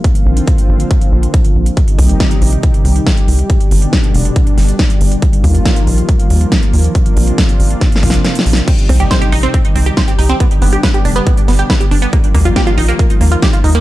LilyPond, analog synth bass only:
\new Staff \with { instrumentName = "Analog synth bass" } { \clef bass \time 4/4 \key c \minor \tempo 4 = 139 r8 bes,,8 r8 aes,,8 r8 bes,,8 r8 bes,,8 | r8 c,8 r8 bes,,8 r8 c,8 r8 c,8 | r8 g,,8 r8 f,,8 r8 g,,8 r8 g,,8 | r8 ees,8 r8 bes,,8 r8 ees,8 r8 ees,8 |
r8 bes,,8 r8 aes,,8 r8 bes,,8 r8 bes,,8 | r8 c,8 r8 bes,,8 r8 c,8 r8 c,8 | r8 g,,8 r8 f,,8 r8 g,,8 r8 g,,8 | r8 ees,8 r8 bes,,8 r8 ees,8 r8 ees,8 | }